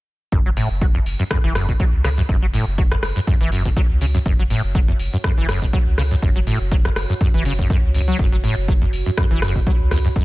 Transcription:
0.32 0.63 F#1 medium
0.32 0.40 F#2 medium
0.32 10.25 F#4 loud
0.32 kick loud
0.46 0.49 F#3 medium
0.57 0.68 A2 loud
0.57 open hi-hat loud
0.67 1.00 F#1 loud
0.67 10.25 C#5 medium
0.81 0.86 F#3 medium
0.81 kick loud
0.95 0.99 E2 loud
1.01 8.90 F#5 medium
1.06 1.15 F#1 loud
1.06 open hi-hat loud
1.19 1.23 F#2 loud
1.31 1.38 F#2 loud
1.31 kick loud
1.31 cross-stick medium
1.44 1.74 F#1 medium
1.44 1.53 E3 loud
1.55 1.66 F#2 medium
1.55 cross-stick medium
1.55 open hi-hat loud
1.69 1.72 B2 medium
1.69 kick medium
1.80 1.84 F#3 medium
1.80 kick loud
1.93 2.23 C#2 medium
2.04 2.09 C#3 medium
2.04 cross-stick medium
2.04 open hi-hat loud
2.18 2.22 F#2 loud
2.29 2.60 F#1 medium
2.29 2.36 F#2 medium
2.29 kick loud
2.42 2.46 F#3 medium
2.54 2.65 A2 loud
2.54 open hi-hat loud
2.67 2.97 F#1 loud
2.78 2.83 F#3 medium
2.78 kick loud
2.92 2.95 E2 loud
2.92 cross-stick medium
3.03 3.12 F#1 loud
3.03 cross-stick medium
3.03 open hi-hat loud
3.16 3.20 F#2 loud
3.27 3.35 F#2 medium
3.27 kick loud
3.41 3.71 F#1 medium
3.41 3.50 E3 loud
3.52 3.63 F#2 medium
3.52 open hi-hat loud
3.65 3.69 B2 medium
3.65 kick medium
3.77 3.81 F#3 medium
3.77 kick loud
3.90 4.20 C#2 medium
4.01 4.06 C#3 medium
4.01 open hi-hat loud
4.15 4.18 F#2 loud
4.26 4.57 F#1 medium
4.26 4.33 F#2 medium
4.26 kick loud
4.39 4.43 F#3 medium
4.50 4.61 A2 loud
4.50 open hi-hat loud
4.64 4.94 F#1 medium
4.75 4.79 F#3 medium
4.75 kick loud
4.88 4.92 E2 loud
4.99 5.09 F#1 loud
4.99 open hi-hat loud
5.13 5.17 F#2 loud
5.24 5.31 F#2 loud
5.24 kick loud
5.24 cross-stick medium
5.37 5.67 F#1 medium
5.37 5.47 E3 loud
5.49 5.60 F#2 medium
5.49 cross-stick medium
5.49 open hi-hat loud
5.62 5.66 B2 medium
5.62 kick medium
5.73 5.78 F#3 medium
5.73 kick loud
5.87 6.17 C#2 medium
5.98 6.02 C#3 medium
5.98 cross-stick medium
5.98 open hi-hat loud
6.11 6.15 F#2 loud
6.22 6.53 F#1 medium
6.22 6.30 F#2 medium
6.22 kick loud
6.36 6.40 F#3 medium
6.47 6.58 A2 loud
6.47 open hi-hat loud
6.60 6.90 F#1 loud
6.72 6.76 F#3 medium
6.72 kick loud
6.85 6.89 E2 loud
6.85 cross-stick medium
6.96 7.05 F#1 loud
6.96 cross-stick medium
6.96 open hi-hat loud
7.10 7.13 F#2 loud
7.21 7.28 F#2 loud
7.21 kick loud
7.34 7.64 F#1 medium
7.34 7.43 E3 loud
7.45 7.53 C#3 loud
7.45 open hi-hat loud
7.59 7.68 F#2 medium
7.59 kick medium
7.70 7.77 F#2 medium
7.70 kick loud
7.83 8.13 C#2 medium
7.95 8.02 F#1 medium
7.95 open hi-hat loud
8.08 8.17 F#3 loud
8.19 8.50 F#1 medium
8.19 8.27 F#2 medium
8.19 kick loud
8.33 8.36 F#3 medium
8.44 8.55 A2 medium
8.44 open hi-hat loud
8.57 8.87 F#1 loud
8.68 8.73 F#3 medium
8.68 kick loud
8.82 8.85 E2 loud
8.88 10.25 B5 medium
8.93 9.02 F#1 loud
8.93 open hi-hat loud
9.06 9.10 F#2 loud
9.17 9.25 F#2 loud
9.17 kick loud
9.17 cross-stick medium
9.31 9.61 F#1 medium
9.31 9.40 E3 loud
9.42 9.53 F#2 medium
9.42 cross-stick medium
9.42 open hi-hat loud
9.55 9.59 B2 medium
9.55 kick medium
9.67 9.71 F#3 medium
9.67 kick loud
9.80 10.10 C#2 medium
9.91 9.99 E2 medium
9.91 cross-stick medium
9.91 open hi-hat loud
10.05 10.08 F#2 loud
10.16 10.25 F#1 medium
10.16 10.23 F#2 medium
10.16 kick loud

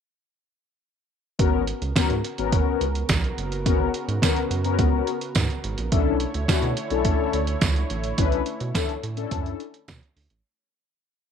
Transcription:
1.39 1.72 G#1 loud
1.39 5.88 C#3 medium
1.39 1.62 B3 medium
1.39 5.88 B3 medium
1.39 1.62 C#4 medium
1.39 1.62 F#4 medium
1.39 5.88 F#4 medium
1.39 1.62 A#4 loud
1.39 5.88 A#4 medium
1.39 kick loud
1.39 closed hi-hat loud
1.67 closed hi-hat medium
1.82 1.93 C#2 medium
1.82 closed hi-hat soft
1.96 2.01 G#2 soft
1.96 2.13 B3 medium
1.96 2.13 C#4 medium
1.96 2.13 F#4 medium
1.96 2.13 A#4 medium
1.96 kick loud
1.96 snare loud
1.96 closed hi-hat loud
1.96 tambourine loud
2.10 2.21 G#2 medium
2.10 closed hi-hat soft
2.24 closed hi-hat medium
2.38 2.61 G#1 medium
2.38 2.84 B3 medium
2.38 2.84 C#4 medium
2.38 2.85 F#4 medium
2.38 2.85 A#4 medium
2.38 closed hi-hat medium
2.52 kick loud
2.52 closed hi-hat medium
2.81 3.03 C#2 medium
2.81 closed hi-hat medium
2.95 closed hi-hat medium
3.09 3.31 B1 loud
3.09 kick loud
3.09 snare loud
3.09 closed hi-hat medium
3.09 tambourine medium
3.24 closed hi-hat soft
3.38 3.67 F#1 medium
3.38 closed hi-hat medium
3.52 closed hi-hat medium
3.65 3.88 G#1 medium
3.65 3.88 B3 medium
3.65 3.89 C#4 medium
3.65 3.89 F#4 medium
3.65 3.89 A#4 medium
3.65 kick loud
3.65 closed hi-hat loud
3.94 closed hi-hat medium
4.08 4.19 G#2 medium
4.08 closed hi-hat medium
4.22 4.39 B3 medium
4.22 4.39 C#4 medium
4.22 4.40 F#4 medium
4.22 4.40 A#4 loud
4.22 kick loud
4.22 snare loud
4.22 closed hi-hat medium
4.22 tambourine loud
4.36 closed hi-hat soft
4.51 4.80 F#2 loud
4.51 closed hi-hat medium
4.64 5.11 B3 medium
4.64 5.11 C#4 medium
4.64 5.11 F#4 medium
4.64 5.11 A#4 medium
4.64 closed hi-hat medium
4.79 5.01 C#2 medium
4.79 kick loud
4.79 closed hi-hat medium
5.07 closed hi-hat medium
5.21 closed hi-hat medium
5.35 5.46 G#2 loud
5.35 kick loud
5.35 snare loud
5.35 closed hi-hat medium
5.35 tambourine medium
5.50 closed hi-hat soft
5.64 5.75 G#1 loud
5.64 closed hi-hat medium
5.78 5.89 A#1 medium
5.78 closed hi-hat medium
5.91 6.25 B1 loud
5.91 10.41 D3 medium
5.91 10.41 A3 medium
5.91 6.15 C#4 loud
5.91 6.15 D4 medium
5.91 6.15 E4 medium
5.91 10.41 E4 medium
5.91 6.15 A4 loud
5.91 10.41 C#5 medium
5.91 kick loud
5.91 closed hi-hat medium
6.20 closed hi-hat medium
6.34 6.46 D2 medium
6.34 closed hi-hat soft
6.48 6.54 B2 soft
6.48 6.66 C#4 medium
6.48 6.66 D4 medium
6.48 6.66 E4 medium
6.48 6.66 F#4 loud
6.48 kick loud
6.48 snare loud
6.48 closed hi-hat medium
6.48 tambourine loud
6.63 6.74 B2 loud
6.63 closed hi-hat soft
6.77 closed hi-hat medium
6.90 7.13 B1 medium
6.90 7.37 C#4 medium
6.90 7.37 D4 medium
6.90 7.37 E4 medium
6.90 7.37 A4 medium
6.90 closed hi-hat soft
7.05 kick loud
7.05 closed hi-hat medium
7.33 7.56 D2 medium
7.33 closed hi-hat medium
7.47 closed hi-hat medium
7.61 7.84 C#2 medium
7.61 kick loud
7.61 snare loud
7.61 closed hi-hat medium
7.61 tambourine medium
7.76 closed hi-hat soft
7.90 8.12 A1 medium
7.90 closed hi-hat medium
8.04 closed hi-hat medium
8.18 8.40 B1 loud
8.18 8.41 C#4 medium
8.18 8.41 D4 medium
8.18 8.41 E4 medium
8.18 8.42 B4 loud
8.18 kick loud
8.18 closed hi-hat loud
8.32 closed hi-hat soft
8.46 closed hi-hat medium
8.60 8.72 B2 medium
8.60 closed hi-hat soft
8.74 8.92 C#4 medium
8.74 8.92 D4 medium
8.74 8.92 E4 medium
8.74 8.92 A4 medium
8.74 kick loud
8.74 snare medium
8.74 closed hi-hat medium
8.74 tambourine loud
8.89 closed hi-hat soft
9.03 9.25 A2 medium
9.03 closed hi-hat medium
9.17 9.63 C#4 medium
9.17 9.63 D4 medium
9.17 9.64 E4 medium
9.17 9.64 A4 loud
9.17 closed hi-hat medium
9.31 9.54 F#2 medium
9.31 kick loud
9.31 closed hi-hat medium
9.46 closed hi-hat soft
9.60 closed hi-hat medium
9.74 closed hi-hat medium
9.88 9.99 B2 loud
9.88 kick loud
9.88 snare loud
9.88 closed hi-hat medium
9.88 tambourine medium
10.03 closed hi-hat soft
10.16 10.27 D2 medium
10.16 open hi-hat medium
10.30 10.42 A1 medium
10.30 closed hi-hat medium

